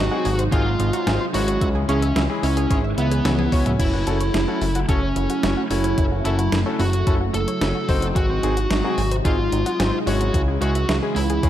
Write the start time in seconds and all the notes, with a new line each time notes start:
Already playing: C3 F#3 G#3 D#4 F#4
0.11 C4 D#4 F#4 G#4
0.25 G#1 G#4, open hi-hat
0.39 C5, closed hi-hat
0.52 G#1 C4 D#4 F4 F#4 G#4, kick, closed hi-hat
0.66 F#4
0.80 G#1 D#4, closed hi-hat
0.93 F#4, closed hi-hat
1.07 G#1 C4 D#4 F#4 G#4 C5, snare, closed hi-hat
1.21 C5
1.34 G#1 G#3 C#4 D#4 E4 F#4 C#5, open hi-hat
1.48 F#4, closed hi-hat
1.61 C#2 C#3 E3 E4, kick, closed hi-hat
1.75 G#4
1.89 C#2 G#3 C#4 E4 G#4 C#5, closed hi-hat
2.02 E5, closed hi-hat
2.16 C#2 E4, snare, closed hi-hat
2.30 G#3 C#4 E4 G#4
2.43 C#2 C#4 E4, open hi-hat
2.57 G#4, closed hi-hat
2.71 G#1 G#3 C#4 E4 G#4 C#5, kick, closed hi-hat
2.84 E5
2.98 C#2 B3 E4, closed hi-hat
3.12 G#4, closed hi-hat
3.25 C#2 G#3 C#4 E4 C#5, snare, closed hi-hat, high tom
3.39 G#4, high tom
3.52 C#2 C#4 E4 F#4 C#5, kick, open hi-hat
3.66 E5, closed hi-hat, mid tom
3.80 F#1 F#3 A3 E4, kick, closed hi-hat, crash
3.93 F#4
4.07 F#1 C#4 E4 F#4 A4, closed hi-hat
4.21 C#5, closed hi-hat
4.34 F#1 E4, snare, closed hi-hat
4.48 C#4 E4 F#4 A4
4.61 F#1 E4, open hi-hat
4.75 F#4, closed hi-hat
4.89 F#1 C#4 E4 F#4 A4, kick, closed hi-hat
5.03 C#5
5.16 F#1 E4, closed hi-hat
5.30 F#4, closed hi-hat
5.43 F#1 C#4 E4 F#4 C#5, snare, closed hi-hat
5.57 F#4
5.71 F#1 C#4 E4 F#4 A4 C#5, open hi-hat
5.84 C#5, closed hi-hat
5.98 F#1 E4, kick, closed hi-hat
6.12 F#4
6.25 F#1 C#4 E4 F#4 A4, closed hi-hat
6.39 F#4, closed hi-hat
6.52 F#1 A4, snare, closed hi-hat
6.66 C#4 E4 F#4 A4 C#5
6.80 F#1 E4 F#4, open hi-hat
6.93 F#4, closed hi-hat
7.07 F#1 C#4 E4 F#4 A4, kick, closed hi-hat
7.21 F#4
7.34 F#1 A4, closed hi-hat
7.48 C#5, closed hi-hat
7.61 F#1 C#4 E4 F#4 C#5, snare, closed hi-hat
7.75 F#4
7.89 F#1 C4 D#4 E4 F#4 C5, kick, open hi-hat
8.02 F#4, closed hi-hat
8.16 G#1 C3 G#3 D#4 F#4 G#4, kick, closed hi-hat
8.30 C5
8.43 G#1 C4 D#4 F#4 G#4, closed hi-hat
8.57 F#4, closed hi-hat
8.70 G#1 D#4, snare, closed hi-hat
8.84 C4 D#4 F#4 G#4
8.98 G#1 G#4, open hi-hat
9.11 C5, closed hi-hat
9.25 G#1 C4 D#4 F4 F#4 G#4, kick, closed hi-hat
9.39 F#4
9.52 G#1 D#4, closed hi-hat
9.66 F#4, closed hi-hat
9.80 G#1 C4 D#4 F#4 G#4 C5, snare, closed hi-hat
9.93 C5
10.07 G#1 G#3 C#4 D#4 E4 F#4 C#5, open hi-hat
10.21 F#4, closed hi-hat
10.34 C#2 C#3 E3 E4, kick, closed hi-hat
10.48 G#4
10.61 C#2 G#3 C#4 E4 F#4 G#4 C#5, closed hi-hat
10.75 E5, closed hi-hat
10.89 C#2 E4, snare, closed hi-hat
11.02 G#3 C#4 E4 G#4
11.16 C#2 E4, open hi-hat
11.30 G#4, closed hi-hat
11.43 C#2 G#3 C#4 E4 G#4 C#5, kick, closed hi-hat